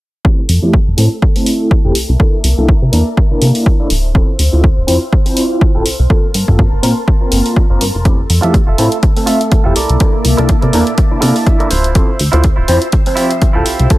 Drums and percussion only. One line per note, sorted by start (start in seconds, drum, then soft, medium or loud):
0.25 kick loud
0.49 open hi-hat loud
0.74 kick loud
0.98 open hi-hat medium
1.22 kick loud
1.36 open hi-hat medium
1.46 open hi-hat medium
1.71 kick loud
1.95 open hi-hat loud
2.20 kick loud
2.44 open hi-hat loud
2.69 kick loud
2.93 open hi-hat medium
3.17 kick loud
3.42 open hi-hat loud
3.55 open hi-hat medium
3.66 kick loud
3.90 open hi-hat loud
4.15 kick loud
4.39 open hi-hat loud
4.64 kick loud
4.88 open hi-hat loud
5.13 kick loud
5.26 open hi-hat medium
5.37 open hi-hat loud
5.61 kick loud
5.86 open hi-hat loud
6.10 kick loud
6.34 open hi-hat loud
6.48 kick medium
6.59 kick loud
6.83 open hi-hat loud
7.08 kick loud
7.32 open hi-hat loud
7.46 open hi-hat medium
7.56 kick loud
7.81 open hi-hat loud
8.05 kick loud
8.05 closed hi-hat medium
8.30 open hi-hat loud
8.43 closed hi-hat soft
8.54 kick loud
8.54 closed hi-hat medium
8.78 open hi-hat medium
8.92 closed hi-hat soft
9.03 kick loud
9.03 closed hi-hat medium
9.17 open hi-hat medium
9.27 open hi-hat medium
9.41 closed hi-hat soft
9.52 kick loud
9.52 closed hi-hat medium
9.76 open hi-hat loud
9.89 closed hi-hat soft
10.00 kick loud
10.00 closed hi-hat medium
10.25 open hi-hat medium
10.38 closed hi-hat soft
10.49 kick loud
10.49 closed hi-hat medium
10.62 closed hi-hat soft
10.73 open hi-hat medium
10.87 closed hi-hat soft
10.98 kick loud
10.98 closed hi-hat medium
11.22 open hi-hat loud
11.36 open hi-hat medium
11.47 kick loud
11.47 closed hi-hat medium
11.60 closed hi-hat soft
11.71 open hi-hat medium
11.84 closed hi-hat soft
11.95 kick loud
11.95 closed hi-hat medium
12.19 open hi-hat medium
12.33 closed hi-hat medium
12.44 kick loud
12.44 closed hi-hat medium
12.68 open hi-hat medium
12.82 closed hi-hat medium
12.92 kick loud
12.92 closed hi-hat medium
13.06 open hi-hat medium
13.17 open hi-hat medium
13.31 closed hi-hat medium
13.42 kick loud
13.42 closed hi-hat medium
13.66 open hi-hat loud
13.80 closed hi-hat soft
13.90 kick loud
13.90 closed hi-hat medium